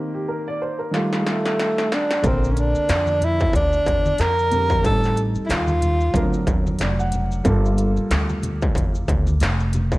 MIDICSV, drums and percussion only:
0, 0, Header, 1, 2, 480
1, 0, Start_track
1, 0, Key_signature, -2, "minor"
1, 0, Tempo, 652174
1, 1646, Time_signature, 4, 2, 24, 8
1, 7349, End_track
2, 0, Start_track
2, 0, Title_t, "Drums"
2, 691, Note_on_c, 9, 38, 50
2, 764, Note_off_c, 9, 38, 0
2, 829, Note_on_c, 9, 38, 50
2, 903, Note_off_c, 9, 38, 0
2, 931, Note_on_c, 9, 38, 67
2, 1005, Note_off_c, 9, 38, 0
2, 1071, Note_on_c, 9, 38, 61
2, 1145, Note_off_c, 9, 38, 0
2, 1174, Note_on_c, 9, 38, 81
2, 1248, Note_off_c, 9, 38, 0
2, 1313, Note_on_c, 9, 38, 76
2, 1387, Note_off_c, 9, 38, 0
2, 1414, Note_on_c, 9, 38, 83
2, 1487, Note_off_c, 9, 38, 0
2, 1550, Note_on_c, 9, 38, 90
2, 1624, Note_off_c, 9, 38, 0
2, 1646, Note_on_c, 9, 36, 107
2, 1648, Note_on_c, 9, 42, 83
2, 1649, Note_on_c, 9, 82, 60
2, 1720, Note_off_c, 9, 36, 0
2, 1721, Note_off_c, 9, 42, 0
2, 1723, Note_off_c, 9, 82, 0
2, 1796, Note_on_c, 9, 82, 44
2, 1870, Note_off_c, 9, 82, 0
2, 1889, Note_on_c, 9, 82, 43
2, 1890, Note_on_c, 9, 42, 69
2, 1963, Note_off_c, 9, 42, 0
2, 1963, Note_off_c, 9, 82, 0
2, 2025, Note_on_c, 9, 82, 40
2, 2098, Note_off_c, 9, 82, 0
2, 2127, Note_on_c, 9, 42, 82
2, 2127, Note_on_c, 9, 82, 58
2, 2131, Note_on_c, 9, 38, 109
2, 2201, Note_off_c, 9, 42, 0
2, 2201, Note_off_c, 9, 82, 0
2, 2204, Note_off_c, 9, 38, 0
2, 2258, Note_on_c, 9, 63, 57
2, 2258, Note_on_c, 9, 82, 42
2, 2332, Note_off_c, 9, 63, 0
2, 2332, Note_off_c, 9, 82, 0
2, 2365, Note_on_c, 9, 63, 42
2, 2365, Note_on_c, 9, 64, 61
2, 2365, Note_on_c, 9, 82, 40
2, 2369, Note_on_c, 9, 42, 66
2, 2438, Note_off_c, 9, 63, 0
2, 2438, Note_off_c, 9, 64, 0
2, 2438, Note_off_c, 9, 82, 0
2, 2443, Note_off_c, 9, 42, 0
2, 2503, Note_on_c, 9, 82, 47
2, 2508, Note_on_c, 9, 36, 91
2, 2576, Note_off_c, 9, 82, 0
2, 2581, Note_off_c, 9, 36, 0
2, 2601, Note_on_c, 9, 36, 80
2, 2610, Note_on_c, 9, 63, 48
2, 2610, Note_on_c, 9, 82, 66
2, 2618, Note_on_c, 9, 42, 78
2, 2674, Note_off_c, 9, 36, 0
2, 2684, Note_off_c, 9, 63, 0
2, 2684, Note_off_c, 9, 82, 0
2, 2691, Note_off_c, 9, 42, 0
2, 2744, Note_on_c, 9, 82, 44
2, 2818, Note_off_c, 9, 82, 0
2, 2843, Note_on_c, 9, 82, 44
2, 2845, Note_on_c, 9, 36, 88
2, 2855, Note_on_c, 9, 42, 62
2, 2916, Note_off_c, 9, 82, 0
2, 2918, Note_off_c, 9, 36, 0
2, 2928, Note_off_c, 9, 42, 0
2, 2986, Note_on_c, 9, 63, 66
2, 2986, Note_on_c, 9, 82, 45
2, 3059, Note_off_c, 9, 63, 0
2, 3059, Note_off_c, 9, 82, 0
2, 3079, Note_on_c, 9, 42, 76
2, 3088, Note_on_c, 9, 82, 54
2, 3097, Note_on_c, 9, 38, 105
2, 3153, Note_off_c, 9, 42, 0
2, 3161, Note_off_c, 9, 82, 0
2, 3170, Note_off_c, 9, 38, 0
2, 3229, Note_on_c, 9, 82, 43
2, 3302, Note_off_c, 9, 82, 0
2, 3323, Note_on_c, 9, 42, 59
2, 3330, Note_on_c, 9, 64, 59
2, 3330, Note_on_c, 9, 82, 43
2, 3396, Note_off_c, 9, 42, 0
2, 3403, Note_off_c, 9, 64, 0
2, 3403, Note_off_c, 9, 82, 0
2, 3458, Note_on_c, 9, 36, 92
2, 3465, Note_on_c, 9, 82, 46
2, 3532, Note_off_c, 9, 36, 0
2, 3539, Note_off_c, 9, 82, 0
2, 3565, Note_on_c, 9, 36, 100
2, 3566, Note_on_c, 9, 82, 59
2, 3568, Note_on_c, 9, 42, 80
2, 3639, Note_off_c, 9, 36, 0
2, 3639, Note_off_c, 9, 82, 0
2, 3641, Note_off_c, 9, 42, 0
2, 3708, Note_on_c, 9, 82, 43
2, 3720, Note_on_c, 9, 38, 33
2, 3781, Note_off_c, 9, 82, 0
2, 3794, Note_off_c, 9, 38, 0
2, 3803, Note_on_c, 9, 82, 40
2, 3807, Note_on_c, 9, 42, 65
2, 3877, Note_off_c, 9, 82, 0
2, 3881, Note_off_c, 9, 42, 0
2, 3938, Note_on_c, 9, 82, 39
2, 4012, Note_off_c, 9, 82, 0
2, 4046, Note_on_c, 9, 82, 61
2, 4049, Note_on_c, 9, 42, 93
2, 4052, Note_on_c, 9, 38, 101
2, 4119, Note_off_c, 9, 82, 0
2, 4122, Note_off_c, 9, 42, 0
2, 4126, Note_off_c, 9, 38, 0
2, 4177, Note_on_c, 9, 63, 53
2, 4177, Note_on_c, 9, 82, 43
2, 4250, Note_off_c, 9, 63, 0
2, 4250, Note_off_c, 9, 82, 0
2, 4284, Note_on_c, 9, 63, 41
2, 4284, Note_on_c, 9, 64, 57
2, 4284, Note_on_c, 9, 82, 41
2, 4285, Note_on_c, 9, 42, 68
2, 4357, Note_off_c, 9, 63, 0
2, 4357, Note_off_c, 9, 64, 0
2, 4357, Note_off_c, 9, 82, 0
2, 4358, Note_off_c, 9, 42, 0
2, 4420, Note_on_c, 9, 82, 45
2, 4494, Note_off_c, 9, 82, 0
2, 4517, Note_on_c, 9, 36, 79
2, 4526, Note_on_c, 9, 63, 46
2, 4526, Note_on_c, 9, 82, 63
2, 4530, Note_on_c, 9, 42, 83
2, 4591, Note_off_c, 9, 36, 0
2, 4600, Note_off_c, 9, 63, 0
2, 4600, Note_off_c, 9, 82, 0
2, 4604, Note_off_c, 9, 42, 0
2, 4662, Note_on_c, 9, 82, 45
2, 4735, Note_off_c, 9, 82, 0
2, 4761, Note_on_c, 9, 36, 93
2, 4763, Note_on_c, 9, 82, 43
2, 4765, Note_on_c, 9, 42, 62
2, 4835, Note_off_c, 9, 36, 0
2, 4836, Note_off_c, 9, 82, 0
2, 4838, Note_off_c, 9, 42, 0
2, 4907, Note_on_c, 9, 63, 62
2, 4907, Note_on_c, 9, 82, 41
2, 4980, Note_off_c, 9, 63, 0
2, 4980, Note_off_c, 9, 82, 0
2, 4995, Note_on_c, 9, 42, 74
2, 5009, Note_on_c, 9, 82, 56
2, 5012, Note_on_c, 9, 38, 101
2, 5068, Note_off_c, 9, 42, 0
2, 5083, Note_off_c, 9, 82, 0
2, 5086, Note_off_c, 9, 38, 0
2, 5149, Note_on_c, 9, 82, 47
2, 5222, Note_off_c, 9, 82, 0
2, 5240, Note_on_c, 9, 42, 64
2, 5250, Note_on_c, 9, 64, 59
2, 5250, Note_on_c, 9, 82, 42
2, 5313, Note_off_c, 9, 42, 0
2, 5323, Note_off_c, 9, 64, 0
2, 5323, Note_off_c, 9, 82, 0
2, 5385, Note_on_c, 9, 82, 48
2, 5459, Note_off_c, 9, 82, 0
2, 5483, Note_on_c, 9, 36, 102
2, 5484, Note_on_c, 9, 42, 79
2, 5485, Note_on_c, 9, 82, 60
2, 5556, Note_off_c, 9, 36, 0
2, 5557, Note_off_c, 9, 42, 0
2, 5559, Note_off_c, 9, 82, 0
2, 5632, Note_on_c, 9, 82, 44
2, 5706, Note_off_c, 9, 82, 0
2, 5724, Note_on_c, 9, 82, 43
2, 5727, Note_on_c, 9, 42, 67
2, 5798, Note_off_c, 9, 82, 0
2, 5800, Note_off_c, 9, 42, 0
2, 5863, Note_on_c, 9, 82, 40
2, 5937, Note_off_c, 9, 82, 0
2, 5967, Note_on_c, 9, 42, 91
2, 5971, Note_on_c, 9, 38, 107
2, 5971, Note_on_c, 9, 82, 60
2, 6040, Note_off_c, 9, 42, 0
2, 6044, Note_off_c, 9, 38, 0
2, 6045, Note_off_c, 9, 82, 0
2, 6104, Note_on_c, 9, 63, 56
2, 6104, Note_on_c, 9, 82, 40
2, 6177, Note_off_c, 9, 63, 0
2, 6177, Note_off_c, 9, 82, 0
2, 6204, Note_on_c, 9, 63, 45
2, 6204, Note_on_c, 9, 64, 63
2, 6204, Note_on_c, 9, 82, 44
2, 6207, Note_on_c, 9, 42, 69
2, 6277, Note_off_c, 9, 63, 0
2, 6277, Note_off_c, 9, 64, 0
2, 6277, Note_off_c, 9, 82, 0
2, 6281, Note_off_c, 9, 42, 0
2, 6343, Note_on_c, 9, 82, 45
2, 6348, Note_on_c, 9, 36, 92
2, 6416, Note_off_c, 9, 82, 0
2, 6421, Note_off_c, 9, 36, 0
2, 6441, Note_on_c, 9, 36, 83
2, 6450, Note_on_c, 9, 63, 46
2, 6450, Note_on_c, 9, 82, 63
2, 6460, Note_on_c, 9, 42, 85
2, 6515, Note_off_c, 9, 36, 0
2, 6524, Note_off_c, 9, 63, 0
2, 6524, Note_off_c, 9, 82, 0
2, 6534, Note_off_c, 9, 42, 0
2, 6585, Note_on_c, 9, 82, 45
2, 6659, Note_off_c, 9, 82, 0
2, 6682, Note_on_c, 9, 82, 46
2, 6685, Note_on_c, 9, 36, 90
2, 6692, Note_on_c, 9, 42, 67
2, 6756, Note_off_c, 9, 82, 0
2, 6759, Note_off_c, 9, 36, 0
2, 6766, Note_off_c, 9, 42, 0
2, 6822, Note_on_c, 9, 63, 62
2, 6822, Note_on_c, 9, 82, 45
2, 6896, Note_off_c, 9, 63, 0
2, 6896, Note_off_c, 9, 82, 0
2, 6921, Note_on_c, 9, 42, 78
2, 6926, Note_on_c, 9, 82, 54
2, 6938, Note_on_c, 9, 38, 107
2, 6994, Note_off_c, 9, 42, 0
2, 7000, Note_off_c, 9, 82, 0
2, 7012, Note_off_c, 9, 38, 0
2, 7065, Note_on_c, 9, 82, 42
2, 7138, Note_off_c, 9, 82, 0
2, 7161, Note_on_c, 9, 42, 64
2, 7171, Note_on_c, 9, 64, 63
2, 7171, Note_on_c, 9, 82, 43
2, 7235, Note_off_c, 9, 42, 0
2, 7244, Note_off_c, 9, 64, 0
2, 7244, Note_off_c, 9, 82, 0
2, 7299, Note_on_c, 9, 36, 87
2, 7305, Note_on_c, 9, 82, 45
2, 7349, Note_off_c, 9, 36, 0
2, 7349, Note_off_c, 9, 82, 0
2, 7349, End_track
0, 0, End_of_file